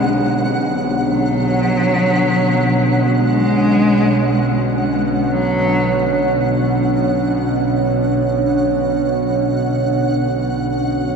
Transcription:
Already playing: B1 B2 G#3 B3 D4 C#5 F#5
1.04 F#3
3.16 G#3
5.30 F#3
7.44 F#5

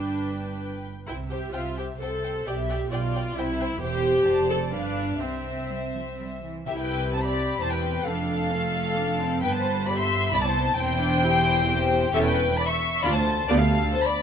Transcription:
Already playing: G1 G2 D4 B4 G5
1.07 C2 C3 E4 C5 E5 G5
1.31 G4 C5 G5
1.53 C2 C3 F4 C5 G5
1.77 G4 C5 G5
2.00 C2 C3 A4 C5 G5
2.24 C5 G5
2.46 B1 B2 G4 D5 E5 G5
2.70 D5 G5
2.92 B1 B2 F4 D5 G5
3.15 D5 G5
3.37 C2 C3 E4 C5 E5 G5
3.60 C5 G5
3.81 E1 E2 G4 C5 G5
4.26 F1 F2 C5 D5 A5
4.50 A4
4.73 G1 G2 D4 B4 F5
5.21 C2 C3 C4 C5 E5
5.69 G3
5.95 F3
6.18 G3
6.42 E3
6.67 C2 C3 E4 G4 E5
6.79 B4 G5
7.14 C4 C5 A5
7.25 D5 B5
7.61 E1 E2 C5 A5
7.71 B4 G5
8.06 F1 F2 D4 A4 F5
8.53 A3
8.75 A3
8.97 D4
9.20 C4
9.42 G1 G2 B3 B4 G5
9.53 C5 A5
9.87 B3 G4 D5 B5
9.99 E5 C6
10.32 C2 E4 D5 B5
10.44 C5 A5
10.77 E1 E2 C4 E4 C5 G5
11.00 D4
11.24 E4 G4
11.68 C4 G4
12.12 E1 E2 C#4 G4 A4 E5
12.25 B4 G5
12.57 D5 B5
12.68 E5 C#6
13.02 D2 D4 F4 D5 B5
13.14 C5 A5
13.48 D2 B3 F4 G4 D5
13.59 A4 F5
13.95 C5 A5
14.04 D5 B5

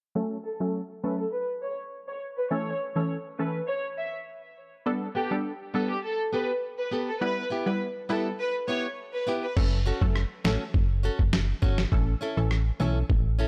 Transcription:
0.15 F#3 A3 C#4 A4
0.45 A4
0.60 F#3 A3 C#4 A4
1.03 F#3 A3 C#4 A4 B4
1.19 A4
1.33 B4
1.63 C#5
2.08 C#5
2.37 B4
2.51 E3 A3 C#4 A4 C#5
2.96 E3 A3 C#4 A4 C#5
3.39 E3 A3 C#4 A4 B4
3.68 C#5
3.98 E5
4.86 G3 B3 D4 A4
5.15 B3 G4 A4
5.31 G3 B3 D4 A4
5.74 G3 B3 D4 G4 A4
5.90 G4
6.04 A4
6.33 B3 G4 A4 B4
6.78 B4
6.91 B3 G4 A4
7.08 A4
7.21 G3 B3 E4 B4
7.50 B3 E4 G4
7.66 G3 B3 E4 B4
8.09 G3 B3 E4 G4 A4 B4
8.39 B4
8.68 B3 E4 G4 C#5
9.14 B4
9.27 B3 E4 G4
9.43 B4
9.56 F#1 F#3 A3 C#4 A4, kick, crash
9.86 C#4 F#4 A4
10.01 F#1 F#3 A3 C#4 A4, kick
10.16 cross-stick
10.44 A1 F#3 A3 C#4 F#4 A4, snare
10.74 F#1, kick
11.03 C#4 F#4 A4
11.19 F#1, kick
11.33 snare
11.62 G1 C#4 F#4 A4, kick
11.78 snare
11.92 A1 E3 A3 C#4 A4, kick
12.21 C#4 E4 A4
12.37 A1 E3 A3 C#4 A4
12.51 cross-stick
12.80 B1 E3 A3 C#4 E4 A4
13.10 A1, kick
13.39 C#4 E4 A4

